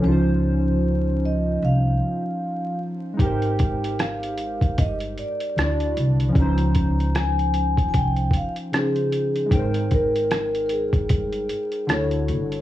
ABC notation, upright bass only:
X:1
M:4/4
L:1/8
Q:"Swing 16ths" 1/4=76
K:Dblyd
V:1 name="Upright bass" clef=bass
D,,4 C,, z3 | A,,,4 G,,, z =D,, C,, | D,,4 C,, z3 | A,,,4 G,,, z =D,, G,,, |]